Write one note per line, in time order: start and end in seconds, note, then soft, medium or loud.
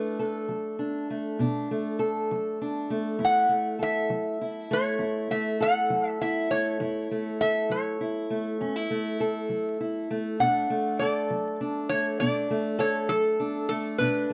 0.00 0.13 B2 medium
0.00 1.10 A3 soft
0.00 0.78 D4 medium
0.00 0.45 B4 medium
0.19 1.99 A4 medium
0.48 1.03 F#3 medium
0.79 1.39 D4 medium
1.10 1.71 A3 medium
1.39 1.93 B2 medium
1.39 2.60 D4 medium
1.71 2.90 A3 soft
1.99 3.79 A4 medium
2.31 2.84 F#3 medium
2.61 3.17 D4 medium
2.90 3.49 A3 medium
3.19 3.73 F#2 medium
3.19 4.41 E4 medium
3.25 3.82 F#5 loud
3.49 4.70 A3 soft
3.79 5.60 A4 medium
3.79 4.74 E5 loud
4.10 4.64 F#3 medium
4.41 5.00 E4 medium
4.71 5.30 A3 medium
4.71 5.33 C#5 medium
4.99 5.53 F#2 medium
4.99 6.20 E4 medium
5.31 6.51 A3 medium
5.31 5.61 E5 medium
5.60 7.40 A4 medium
5.60 6.08 F#5 loud
5.90 6.44 F#3 medium
6.08 6.21 E5 loud
6.21 6.77 E4 medium
6.21 6.51 E5 medium
6.51 7.11 A3 medium
6.51 7.43 C#5 medium
6.80 7.34 F#2 medium
6.80 7.99 E4 medium
7.11 8.30 A3 soft
7.41 9.20 A4 medium
7.41 7.71 E5 loud
7.70 8.24 F#3 medium
7.70 9.46 C#5 medium
8.01 8.60 E4 medium
8.30 8.90 A3 medium
8.61 9.14 F#2 medium
8.61 8.76 C#4 medium
8.76 9.79 E4 medium
8.90 10.10 A3 medium
9.20 10.43 A4 medium
9.49 10.03 F#3 medium
9.80 10.36 E4 medium
10.11 10.70 A3 medium
10.40 10.94 B2 medium
10.40 11.60 D4 medium
10.40 11.02 F#5 medium
10.70 11.91 A3 soft
10.99 12.78 A4 medium
10.99 11.55 D5 medium
11.30 11.84 F#3 medium
11.61 12.21 D4 medium
11.89 12.50 A3 medium
11.89 12.19 C#5 loud
12.20 12.74 B2 medium
12.20 13.38 D4 medium
12.20 12.80 D5 medium
12.50 13.70 A3 medium
12.79 14.02 A4 medium
12.79 13.10 C#5 medium
13.09 13.63 F#3 medium
13.09 13.68 A4 medium
13.40 13.96 D4 medium
13.69 14.30 A3 medium
13.69 14.00 A4 medium
13.98 14.33 B2 medium
13.98 14.33 D4 medium
13.98 14.33 B4 medium